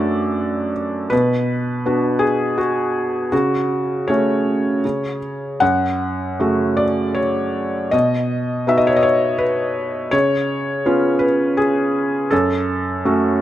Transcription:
felt piano
Already playing: F#2 A3 D4 F#4 A4 D5
1.10 B2 B4
1.86 B3 D4 F#4
2.19 G#4
2.58 F#4
3.32 C#3 F#4
4.08 A3 C#4 F#4 C#5
4.85 C#3
5.60 F#2 F#5
6.40 C#3 A3 F#4
6.77 D5
7.15 C#5
7.91 B2 D#5
8.67 B3 D#4 F#4 E5
8.78 D#5
8.87 C#5
8.96 D#5
9.03 C#5
9.38 B4
10.11 C#3 C#5
10.86 B3 C#4 F4
11.19 B4
11.57 G#4
12.31 F#2 A4
13.05 A3 C#4 F#4

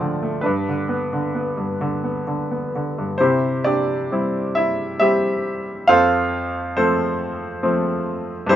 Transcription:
grand piano
Already playing: D2 A2 F3 A3 F4 C5 D5
0.00 D3
0.22 A3
0.41 D4 B4
0.46 G2
0.69 D3
0.89 B3
1.13 D3
1.35 B3
1.57 G2
1.81 D3
2.04 B3
2.27 D3
2.51 B3
2.75 D3
2.98 G2
3.18 C3 C4 E4 G4 C5
3.64 D4 G4 D5
4.12 G3 C4 E4
4.55 E4 E5
5.00 G3 C4 E4 G4 E5
5.88 F2 F4 A4 C5 F5
6.76 F3 A3 C4 A4 C5
7.63 F3 A3 C4
8.47 G2 C4 E4 G4 C5

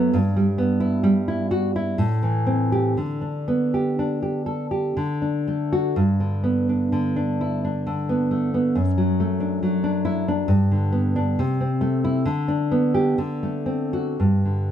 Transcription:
nylon-string guitar
Already playing: F#2 F#3 A3 B3
0.13 G2
0.36 G3
0.58 B3
0.80 E4
1.03 G3
1.28 E4
1.51 F#4
1.76 E4
1.98 A2
2.23 E3
2.46 C4
2.72 G4
2.97 D3
3.21 D4
3.48 B3
3.74 G4
3.99 D4
4.22 G4
4.46 A4
4.71 G4
4.97 D3
5.22 D4
5.48 A3
5.72 F#4
5.96 G2
6.20 D3
6.44 B3
6.69 D4
6.92 D3
7.16 D4
7.41 E4
7.65 D4
7.87 D3
8.09 B3
8.31 A3
8.54 B3
8.75 F#2
8.98 F#3
9.20 A3
9.40 D4
9.63 F#3
9.84 D4
10.05 E4
10.28 D4
10.48 G2
10.72 D3
10.92 B3
11.16 D4
11.39 C3
11.61 C4
11.81 A3
12.04 E4
12.25 D3
12.48 D4
12.71 B3
12.94 G4
13.18 D3
13.43 A3
13.66 C4
13.93 F#4
14.20 G2
14.45 D3

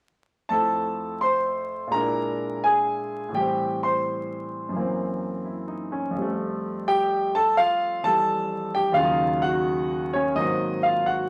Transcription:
grand piano
0.49 F2 F3 A3 E4 A4 A5
1.21 C5 C6
1.87 A#2 G#3
1.92 D4 A#4 A#5
1.98 E4
2.64 G#4 G#5
3.29 A2 E3
3.35 G3 G4 G5
3.40 C4
3.83 C5 C6
4.69 F#2 E3
4.76 A#3 C4
5.45 E4
5.68 D#4
5.92 C#4
6.11 F2
6.15 F3 G3
6.22 A3
6.88 G4 G5
7.35 A4 A5
7.57 F4 F5
8.03 E3 G3 A4 A5
8.75 G4 G5
8.92 D#2 F4 F5
8.96 C#3 F#3
9.04 D#4
9.42 F#4 F#5
10.13 C#4 C#5
10.35 G#2 D#3 F#3 A#3 C4 D#4 D#5
10.83 F4 F5
11.06 F#4 F#5

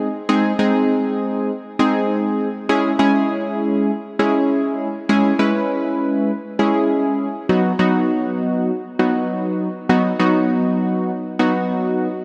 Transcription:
analog polysynth
0.29 G#3 C4 D#4 G#4
0.59 G#3 C4 D#4 G#4
1.79 G#3 C4 D#4 G#4
2.69 G#3 C#4 E4 G#4
2.99 G#3 C#4 E4 G#4
4.19 G#3 C#4 E4 G#4
5.09 G#3 C#4 E4 G#4
5.39 G#3 C#4 E4 B4
6.59 G#3 C#4 E4 G#4
7.49 F#3 B3 D#4 F#4
7.79 F#3 B3 D#4 F#4
8.99 F#3 B3 D#4 F#4
9.89 F#3 B3 D#4 F#4
10.19 F#3 B3 D#4 F#4
11.39 F#3 B3 D#4 F#4

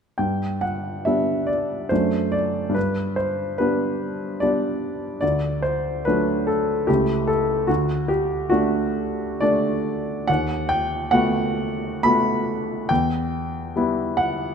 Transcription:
grand piano
0.18 G2 G5
0.61 F#5
1.05 G3 B3 D4 E5
1.47 D5
1.89 F#2 A3 D4 C5
2.32 D5
2.69 G2
2.74 B4
3.16 C5
3.58 G3 B3 D4 B4
4.40 G3 B3 D4 D5
5.21 D2 D5
5.62 C5
6.05 F#3 A3 D4 B4
6.47 A4
6.87 C#2 A3 E4 G4
7.28 A4
7.67 D2 F#4
8.08 G4
8.50 A3 D4 F#4
9.41 A3 D4 D5
10.27 D#2 F#5
10.69 G5
11.11 A3 B3 F#4 F#5
12.03 A3 B3 F#4 B5
12.89 E2 G5
13.76 G3 B3 E4
14.17 F#5

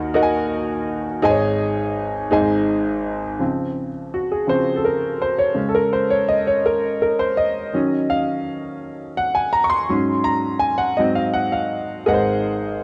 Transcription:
grand piano
Already playing: D#2 D#3 D#4 F#4 A#4 D#5 F#5
0.14 D#4 F#4 A#4 D#5 F#5
0.23 G#5
1.22 G#1 G#2 D#4 G#4 C5 D#5 G#5
1.30 C#5
2.31 G#1 G#2 D#4 G#4 C5 D#5 G#5
3.39 C#3 F3 C4
4.14 F#4
4.31 G#4
4.47 C#3 F3 C4 C5
4.76 A4
4.85 A#4
5.22 C5
5.39 C#5
5.54 C#3 G#3 C#4
5.69 A4
5.75 A#4
5.93 C5
6.10 C#5
6.29 D#5
6.47 C#5
6.66 A#4
7.02 A#4
7.19 C5
7.37 D#5
7.73 D#3 F#3 C#4
8.10 F5
9.17 F#5
9.35 G#5
9.53 A#5
9.64 C#6
9.70 C6
9.89 G#2 F#3 C#4
10.24 A#5
10.59 G#5
10.78 F#5
10.97 G#2 F#3 C4 D#5
11.15 F5
11.33 F#5
11.52 F5
12.06 G#1 G#2 G#4 A#4 B4 D#5 F#5
12.14 C5

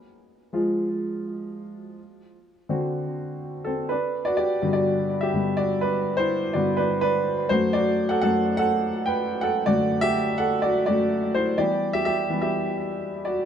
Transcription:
upright piano
0.53 F3 G#3 F4
2.69 D3 C4 F#4
3.65 C4 A4
3.89 D4 B4
4.25 F#4 D5
4.37 G4 D5
4.62 G2 B2 D3
4.73 F#4 D5
5.21 G4 E5
5.34 G2 D3 B3
5.57 F#4 D5
5.81 D4 B4
6.17 E4 C5
6.53 G2 D3 B3 F#4 D5
6.77 D4 B4
7.01 D4 B4
7.49 F#2 F#3 A3 F#4 C5
7.73 F#4 D5
8.09 A4 F#5
8.21 F#2 F#3 A3 A4 F#5
8.57 A4 F#5
9.06 B4 G5
9.41 A4 F#5
9.66 F#2 D3 A3 F#4 D5
10.01 G4 E5
10.38 A4 F#5
10.62 F#4 D5
10.86 F#2 F#3 A3 F#4 D5
11.35 E4 C5
11.58 E3 G3 B3 G4 D5
11.93 G4 E5
12.05 G4 E5
12.29 E3 G3 B3
12.42 G4 E5
13.25 F#4 D5

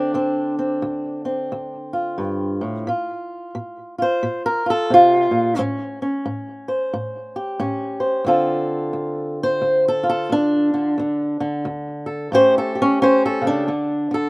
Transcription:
steel-string acoustic guitar
Already playing: D3 C4 D4
0.14 D2 C4
0.59 C4
0.82 D2
1.25 C4
1.52 D2
1.93 F4
2.18 G2
2.61 A2
2.87 A#2 F4
3.55 A#2
3.98 F4 C5
4.23 A#2
4.46 A#4
4.66 F4
4.70 A4
4.90 C3 F4
5.31 A#2
5.59 A2 C#4
6.02 C#4
6.26 A2
6.68 C5
6.94 A2
7.36 G4
7.60 A2 C#4
8.00 C5
8.25 D2 D3 C4 F4 A4
8.93 D2
9.43 C5
9.62 D2
9.88 A4
10.03 F4
10.10 A4
10.30 D2 D4
10.74 D3
10.98 D2 D3
11.40 D3
11.65 D2
12.06 A4
12.32 A2 A3 C#4 G4 C5
12.58 A4
12.75 G4
12.82 C#4
13.02 C#4 C5
13.26 A4
13.41 C#3
13.47 D4
13.68 D2 D3
14.11 D3 A4

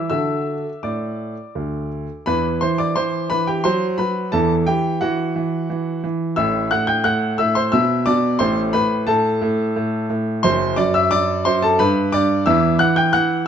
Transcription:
grand piano
Already playing: E3
0.10 D3 F#4 A4 E5 E6
0.83 A2 D5 D6
1.55 D2
2.26 E2 E3 B4 B5
2.61 E3 C5 C6
2.78 D5 D6
2.96 E3 C5 C6
3.30 E3 B4 B5
3.47 G4 G5
3.64 F#3 C5 C6
3.98 F#3 B4 B5
4.32 E2 E3 A4 A5
4.66 E3 G4 G5
5.01 E3 F#4 F#5
5.36 E3
5.70 E3
6.04 E3
6.36 A1 A2 E5 E6
6.71 A2 F#5 F#6
6.87 G5 G6
7.04 A2 F#5 F#6
7.38 A2 E5 E6
7.55 C5 C6
7.72 B2 E5 E6
8.06 B2 D5 D6
8.39 A1 A2 C5 C6
8.73 A2 B4 B5
9.07 A2 A4 A5
9.42 A2
9.76 A2
10.10 A2
10.43 F#1 F#2 C5 C6
10.76 F#2 D5 D6
10.94 E5 E6
11.11 F#2 D5 D6
11.45 F#2 C5 C6
11.62 A4 A5
11.79 G2 B4 B5
12.12 G2 D5 D6
12.46 E2 E3 E5 E6
12.79 E3 F#5 F#6
12.96 G5 G6
13.13 E3 F#5 F#6

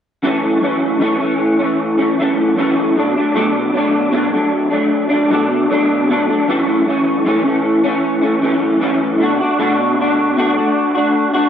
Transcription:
clean electric guitar
0.22 F#2 E3 A3 C#4
0.60 F#2 E3 A3 C#4
0.99 F#2 E3 A3 C#4
1.19 E3 A3 C#4
1.59 E3 A3 C#4
1.98 E3 A3 C#4
2.18 F#2 E3 A3 C#4
2.57 F#2 E3 A3 C#4
2.95 B2 F#3 A3 D4
3.16 F#3 A3 D4
3.34 B2 F#3 A3 D4
3.73 B2 F#3 A3 D4
4.11 B2 F#3 A3 D4
4.32 F#3 A3 D4
4.70 F#3 A3 D4
5.09 F#3 A3 D4
5.29 B2 F#3 A3 D4
5.69 B2 F#3 A3 D4
6.08 B2 F#3 A3 D4
6.27 A3 D4
6.32 F#3
6.48 F#2 E3 A3 C#4
6.86 F#2 E3 A3 C#4
7.25 F#2 E3 A3 C#4
7.45 E3 A3 C#4
7.84 A3 C#4
7.88 E3
8.21 E3 A3 C#4
8.42 F#2 E3 A3 C#4
8.80 F#2 E3 A3 C#4
9.19 B2 A3 D4 F#4
9.40 A3 D4 F#4
9.59 B2 A3 D4 F#4
9.98 B2 A3 D4 F#4
10.36 B2 A3 D4 F#4
10.56 A3 D4 F#4
10.94 A3 D4 F#4
11.33 A3 D4 F#4

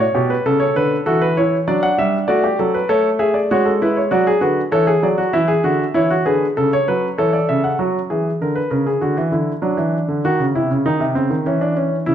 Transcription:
grand piano
0.00 C#5
0.15 B2 G4
0.30 B4
0.46 C#3 A4
0.60 C#5
0.76 D3 B4
1.06 E3 F#4 A4
1.22 B4
1.37 E4 C#5
1.68 F#3 D4 D5
1.83 F#5
1.98 G3 E5
2.28 A3 F#4 D5
2.44 G4
2.59 F#3 A4
2.74 B4
2.89 A3 A4 C#5
3.19 G#4 E5
3.34 D5
3.51 G#3 F#4 C#5
3.65 A4
3.82 E4 B4
3.96 C#5
4.11 F#3 F#4 D5
4.27 G#4
4.41 D3 F#4 B4
4.72 E3 A4 C#5
4.87 G#4
5.03 F#3 D5
5.18 F#4
5.33 E3 E4 E5
5.48 G#4
5.64 D3 F#4
5.94 E3 E4 C#5
6.10 F#4
6.25 D3 G#4 B4
6.57 C#3 A4
6.73 C#5
6.88 F#3 B4
7.18 E3 A4 C#5
7.33 D5
7.49 C#3 E5
7.64 F#5
7.79 F#3 F#4
8.10 E3 G#4
8.41 D3 A#4
8.55 B4
8.70 C#3 A#4
8.87 G#4
9.01 D3 F#4
9.17 E3
9.32 D3 E4
9.62 F#3 D4
9.77 E3
10.08 D3
10.25 D#3 F#4
10.39 C#3
10.55 C3 E4
10.71 C#3
10.86 D#3 D#4
11.00 C3
11.15 C#3 C4
11.30 D#3
11.46 E3 C#4
11.61 D4
11.77 C#4
12.06 C#3 E4

